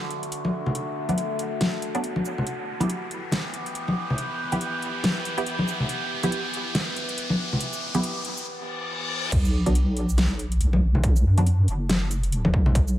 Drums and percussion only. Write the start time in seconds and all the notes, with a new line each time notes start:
0.11 closed hi-hat
0.23 closed hi-hat
0.32 closed hi-hat
0.45 high conga
0.66 low conga
0.75 closed hi-hat
1.09 closed hi-hat, high conga
1.18 closed hi-hat
1.39 closed hi-hat
1.61 snare, closed hi-hat, high conga
1.82 closed hi-hat
1.95 closed hi-hat
2.04 closed hi-hat
2.16 high conga
2.25 shaker
2.38 low conga
2.47 closed hi-hat
2.80 closed hi-hat, high conga
2.90 closed hi-hat
3.11 closed hi-hat
3.31 snare, closed hi-hat, high conga
3.54 closed hi-hat
3.66 closed hi-hat
3.75 closed hi-hat
3.88 high conga
4.10 low conga
4.18 closed hi-hat
4.52 closed hi-hat, high conga
4.61 closed hi-hat
4.82 closed hi-hat
5.03 snare, closed hi-hat, high conga
5.25 closed hi-hat
5.38 closed hi-hat
5.46 closed hi-hat
5.59 high conga
5.68 shaker
5.80 low conga
5.89 closed hi-hat
6.23 closed hi-hat, high conga
6.32 closed hi-hat
6.54 closed hi-hat
6.75 snare, closed hi-hat, high conga
6.96 closed hi-hat
7.09 closed hi-hat
7.18 closed hi-hat
7.30 high conga
7.53 low conga
7.61 closed hi-hat
7.73 shaker
7.95 closed hi-hat, high conga
8.03 closed hi-hat
8.25 closed hi-hat
8.37 shaker
9.32 kick, closed hi-hat, crash
9.45 shaker
9.66 closed hi-hat, high conga
9.75 closed hi-hat
9.97 closed hi-hat
10.09 shaker
10.17 snare, closed hi-hat, high conga
10.39 closed hi-hat
10.52 closed hi-hat
10.61 closed hi-hat
10.73 high conga
10.95 low conga
11.04 kick, closed hi-hat
11.16 shaker
11.38 closed hi-hat, high conga
11.46 closed hi-hat
11.68 closed hi-hat
11.89 snare, closed hi-hat, high conga
12.11 closed hi-hat, shaker
12.23 closed hi-hat
12.32 closed hi-hat
12.45 kick, high conga
12.54 kick
12.66 low conga
12.75 kick, closed hi-hat
12.88 shaker